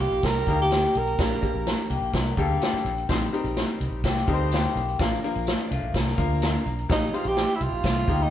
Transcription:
Already playing: G3 A#3 D#4 G4 A#4
0.00 A#3 G4 G5, closed hi-hat
0.12 A#1
0.23 C2 D4 A#4 A#5, kick, snare, closed hi-hat, tambourine
0.36 snare
0.47 D2 G3 A#3 D#4 G4 A#4, kick, closed hi-hat
0.59 G4 G5
0.71 snare, closed hi-hat, tambourine
0.95 B1 A#4 A#5, closed hi-hat
1.07 closed hi-hat
1.19 A#1 G3 A#3 D4 G4 A#4, kick, snare, closed hi-hat, tambourine
1.42 G3 A#3 D4 G4 A#4, kick, closed hi-hat
1.54 A#1
1.67 snare, closed hi-hat, tambourine
1.90 C2 A#3 G4, closed hi-hat
2.02 A#1
2.13 C2 D4 A#4, kick, snare, closed hi-hat, tambourine
2.37 D2 G3 A#3 D4 G4 A4, kick, closed hi-hat
2.62 snare, closed hi-hat, tambourine
2.73 muted fingered electric bass stroke
2.85 A#1, closed hi-hat
2.98 closed hi-hat
3.09 A#1 G3 C4 D#4 G4 C5, kick, snare, closed hi-hat, tambourine
3.33 G3 C4 D#4 G4 A#4, closed hi-hat
3.44 A#1, closed hi-hat
3.57 snare, closed hi-hat, tambourine
3.80 C2, closed hi-hat
3.92 A#1
4.04 C2 A#3 G4, kick, snare, closed hi-hat, tambourine
4.16 snare
4.27 D2 G3 C4 D#4 G4 A4 A#4, kick, closed hi-hat
4.33 C5
4.52 A#3 G4, snare, closed hi-hat, tambourine
4.75 B1, closed hi-hat
4.88 closed hi-hat
4.99 A#1 F3 A#3 D4 F4 A#4, kick, snare, closed hi-hat, tambourine
5.24 F3 A#3 D4 F4 A#4, closed hi-hat
5.35 A#1, closed hi-hat
5.47 F3 D4, snare, closed hi-hat, tambourine
5.71 C2 A3 F4, closed hi-hat
5.83 A#1
5.94 C2 D4 A#4, kick, snare, closed hi-hat, tambourine
6.07 snare
6.17 D2 F3 A#3 D4 F4 A#4, kick, closed hi-hat
6.42 A#5, snare, closed hi-hat, tambourine
6.66 B1, closed hi-hat
6.79 closed hi-hat
6.89 A#1 G3 A#3 D#4 G4 A#4, kick, snare, closed hi-hat, tambourine
7.13 G3 A#3 D#4 F4 G4 C5 F5, closed hi-hat
7.24 A#1 G4 G5, closed hi-hat
7.37 snare, closed hi-hat, tambourine
7.55 E4 E5
7.61 C2 F4 F5, closed hi-hat
7.72 A#1
7.83 C2 A3 F4, kick, snare, closed hi-hat, tambourine
8.08 D2 G3 A#3 D#4 G4 A#4, kick, closed hi-hat
8.21 D#4 D#5

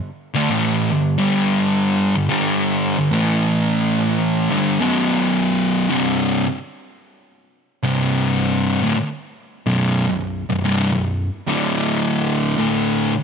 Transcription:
0.34 D3 A3
0.50 A2 E3 A3
0.91 G2 D3
1.18 G2 D3 G3
2.15 G2 D3
2.29 G2 D3 G3
2.98 G2 D3
3.12 A2 E3 A3
4.50 G2 D3 G3
4.79 B1 F#2 B2
5.90 C2 G2 C3
7.83 C2 G2 C3
8.83 D2 A2
8.97 muted distorted electric guitar stroke
9.66 B1 F#2 B2
10.07 B1 F#2
10.50 B1 F#2
10.64 C2 G2
10.92 B1 F#2
11.47 D2 A2 D3
12.58 D2 A2 D3

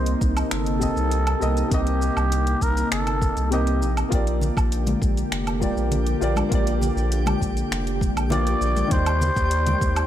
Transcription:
Already playing: C2 C3 A#3 C4 D#4 A#4 C5 D#5
0.06 closed hi-hat
0.21 C2, kick, shaker
0.37 closed hi-hat, low woodblock, shaker
0.51 G1 A4, finger snap, closed hi-hat, shaker
0.66 closed hi-hat
0.79 C3 A#3 C4 D#5, kick, shaker
0.97 C2, shaker
1.11 closed hi-hat, shaker
1.27 closed hi-hat, low woodblock
1.39 C2 C3 C4 A#4 D#5, shaker
1.57 closed hi-hat, shaker
1.68 C2 C3 A#3 C4, kick, closed hi-hat, shaker
1.73 G4 D#5
1.87 closed hi-hat
2.02 shaker
2.17 C2, low woodblock, shaker
2.32 closed hi-hat, shaker
2.47 closed hi-hat
2.62 C2 A#4, kick, shaker
2.77 closed hi-hat, shaker
2.92 G1 A4, finger snap, closed hi-hat, shaker
3.07 closed hi-hat, low woodblock
3.22 kick, shaker
3.37 C2, closed hi-hat, shaker
3.50 C3 C4 G4 A#4 D#5, closed hi-hat, shaker
3.67 closed hi-hat
3.82 A#1, shaker
3.97 closed hi-hat, low woodblock, shaker
4.09 A#1 D3 A#3 F4 G4 G5, kick, closed hi-hat, shaker
4.15 D5
4.27 closed hi-hat
4.41 low conga, shaker
4.57 A#1, kick, low woodblock, shaker
4.72 closed hi-hat, shaker
4.87 closed hi-hat, high conga, low conga
5.02 A#1, kick, shaker
5.17 closed hi-hat, shaker
5.31 F1, finger snap, closed hi-hat, shaker
5.47 closed hi-hat, low woodblock
5.60 A#3 F4 G4 D5, kick, high conga, shaker
5.76 A#1, shaker
5.91 closed hi-hat, low conga, shaker
6.07 closed hi-hat
6.21 A#1 A#3 F4 G4 D5, shaker
6.36 closed hi-hat, high conga, low woodblock, shaker
6.49 A#1 A#3 F4, kick, closed hi-hat, shaker
6.53 G4 D5
6.67 closed hi-hat
6.81 low conga, shaker
6.96 A#1, shaker
7.12 closed hi-hat, shaker
7.26 closed hi-hat, high conga, low conga, low woodblock
7.41 A#1, kick, shaker
7.57 closed hi-hat, shaker
7.71 F1, finger snap, closed hi-hat, shaker
7.87 closed hi-hat
8.01 kick, high conga, shaker
8.16 A#1, closed hi-hat, low woodblock, shaker
8.30 A#3 F4 G4 D5, closed hi-hat, low conga, shaker
8.47 closed hi-hat
8.61 A#1, shaker
8.76 closed hi-hat, high conga, shaker
8.88 D#2 D#3 D#4 G4 C5 D5, kick, closed hi-hat, shaker
8.92 G4 D5
9.06 closed hi-hat, low woodblock
9.21 low conga, shaker
9.36 D#2, kick, shaker
9.51 closed hi-hat, shaker
9.66 closed hi-hat, high conga, low conga
9.81 D#2, kick, shaker
9.96 closed hi-hat, low woodblock, shaker

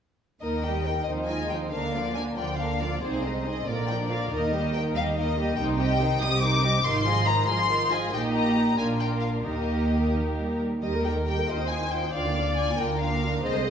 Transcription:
0.41 D#2 D#3 A#3 D#4 A#4 D#5
0.62 G3 A#3 G4 D#5 G5
0.83 A#3 D#4 A#4 G5
1.04 D#2 D#3 F3 C4 C5 D#5
1.08 D#4
1.26 G#3 D#4 F4 D#5 G#5
1.49 F3 C4 D#4 C5 G5
1.71 D2 D3 A#3 D4 A#4 F5
1.93 F3 A#3 F4 D5
2.14 A#3 D4 A#4 G#5
2.36 D2 D3 F3 A#3 F4 D5 G5
2.58 A#3 D4 A#4 F5
2.80 F3 A#3 F4 D5
3.01 C2 C3 C4 D#4 G#4 C5
3.22 G#3 C4 D#4 C5 D#5
3.44 C4 D#4 G#4 D#5
3.66 A#1 A#2 D3 F4 A#4 D5
3.87 F3 D4 A#4 D5 G5
4.09 D3 F4 A#4 D5 F5
4.30 D#2 D#3 A#3 D#4 A#4 D#5
4.52 G3 A#3 G4 D#5
4.73 A#3 D#4 A#4 G5
4.94 D#2 D#3 G3 A#3 G4 D#5 F5
5.16 A#3 D#4 A#4 D#5
5.37 G3 A#3 G4 D#5
5.56 C2 C3 D#3 D#4 C5 G5
5.77 G3 C4 G4 D#5 G5
6.00 D#3 D#4 C5
6.20 C2 C3 G3 C4 G4 D#5 D#6
6.41 D#3 D#4 C5 D6
6.62 G3 C4 G4 D#5
6.83 G#1 G#2 D#3 D#4 F4 C5 C6
7.04 F3 F4 G#4 D#5
7.25 D#3 D#4 F4 C5 A#5
7.46 G#1 G#2 F3 F4 G#4 D#5 C6
7.68 D#3 D#4 F4 C5
7.90 F3 F4 G#4 D#5 G#5
8.11 A#1 A#2 A#3 D#4 G4 D#5 G5
8.34 A#5
8.78 A#1 A#2 A#3 D4 F4 A#4 G#5
9.00 G5
9.21 F5
9.45 D#2 D#3 A#3 D#4 G4 A#4 D#5
10.14 D#3
10.36 G3
10.60 G3
10.82 D#2 D#3 G3 G4 A#4 D#5
10.94 A#3 A#4
11.05 G3 G4 G5
11.16 A#3 A#4
11.27 G3 G4 G5
11.37 A#3 A#4
11.48 D#2 D#3 D#4 F4 C5 D#5
11.60 C4 D#4
11.70 D#4 F4 G#5
11.82 C4 D#4
11.91 D#4 F4 G5
12.03 C4 D#4
12.13 D2 D3 D4 F4 D5 F5
12.25 A#3 D4
12.36 D4 F4
12.47 A#3 D4
12.57 D4 F4 G#5
12.69 A#3 D4
12.78 D2 D3 D4 F4 A#4 G5
12.90 A#3 D4
13.00 D4 F4 F5
13.11 A#3 D4
13.22 D4 F4
13.33 A#3 D4
13.43 C2 C3 C4 G#4 C5 D#5
13.53 G#3 C5
13.64 C4 G#4 D#5

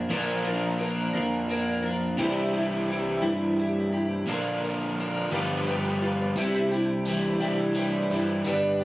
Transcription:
Already playing: D4
0.10 A#1 A#2 D3 F3 A#3 D4 F4 A#4
0.44 F3 A#3 D4 A#4
0.78 F3 A#3 D4 A#4
1.13 F2 A#2 D3 F3 A#3 D4 A#4
1.48 F3 A#3 D4 A#4
1.82 F3 A#3 D4 A#4
2.18 C2 C3 E3 G3 C4 D4 E4 G4 C5
2.53 D4 E4 G4
2.88 G3 D4 E4 G4
3.21 G2 C3 G3 D4 E4 G4
3.56 G3 D4 E4 G4
3.92 D4 E4 G4
4.26 A#1 A#2 D3 F3 A#3 D4 F4 A#4
4.62 F3 A#3 D4 A#4
4.97 F3 A#3 D4 A#4
5.30 G1 G2 F3 G3 B3 F4 G4 B4
5.34 D3
5.67 F3 B3 F4 G4
6.00 F3 B3 F4 G4
6.35 C2 C3 G3 D4 E4 G4 C5, tambourine
6.54 tambourine
6.71 D4 E4 G4, tambourine
7.05 E3 G3 D4 E4, tambourine
7.10 G4
7.23 tambourine
7.40 C2 C3 G3 D4 E4 G4, tambourine
7.74 E3 G3 D4 E4 G4, tambourine
8.10 G2 G3 D4 E4 G4, tambourine
8.44 G1 G2 D3 G3 B3 D4 G4 B4, tambourine
8.62 tambourine
8.79 D4 G4, tambourine

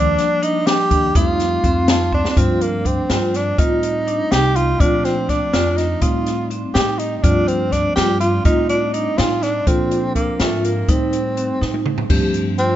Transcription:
Already playing: D#2 F3 G3 A#3 D4
0.18 snare, closed hi-hat
0.43 D4 D#4, closed hi-hat
0.67 G4, snare, closed hi-hat
0.91 D#2 D4, kick, closed hi-hat
1.15 F2 G3 A3 C4 D#4 F4, kick, closed hi-hat
1.40 snare, closed hi-hat
1.64 F2 C4, kick, closed hi-hat
1.88 F4 A5, snare, closed hi-hat
2.12 C4 D4, kick
2.25 snare
2.30 D4
2.36 G2 F3 A3 C4 D4 F4, kick, closed hi-hat
2.61 A#3, closed hi-hat
2.85 C4 D4, kick, closed hi-hat
3.10 G2 F4, snare, closed hi-hat
3.34 D4, snare, closed hi-hat
3.58 A2 G3 A3 C4 D#4 F4, kick, closed hi-hat
3.83 closed hi-hat
4.07 D4, closed hi-hat
4.31 C2 D#4 G4, snare, closed hi-hat
4.56 F4, closed hi-hat
4.80 A#2 F3 A3 C4 D4 F4, kick, closed hi-hat
5.05 C4, snare, closed hi-hat
5.29 D4, kick, snare, closed hi-hat
5.53 F2 F4, snare, closed hi-hat
5.77 D#4, snare, closed hi-hat
6.01 A2 G3 A3 C4 D#4 F4, kick, closed hi-hat
6.26 snare, closed hi-hat
6.51 C4, closed hi-hat
6.74 A2 D#4 G4, snare, closed hi-hat
6.99 D#4, closed hi-hat
7.17 D#4
7.23 G2 F3 A3 C4 D4 F4, kick, closed hi-hat
7.48 C4, closed hi-hat
7.72 D4, kick, snare, closed hi-hat
7.96 G2 F4 G4, snare, closed hi-hat
8.20 F4, closed hi-hat
8.45 A2 G3 A3 C4 D#4 F4, kick, closed hi-hat
8.69 D4, closed hi-hat
8.93 D4 D#4, closed hi-hat
9.18 A2 D#4 F4, snare, closed hi-hat
9.43 D4, snare, closed hi-hat
9.67 A#2 F3 C4 D4 F4 A4, kick, closed hi-hat
9.91 closed hi-hat
10.15 A#3 D4, kick, closed hi-hat
10.40 G#2 A3 F4, snare, closed hi-hat
10.65 A#3, closed hi-hat
10.88 A2 G3 A3 C4 D#4, kick, closed hi-hat
11.13 closed hi-hat
11.37 C4, closed hi-hat
11.61 A2 D#4, snare
11.74 high tom
11.86 mid tom
11.98 floor tom
12.09 G2 F3 A3 C4 D4 G4, kick, crash
12.34 closed hi-hat
12.58 C4 F4, closed hi-hat

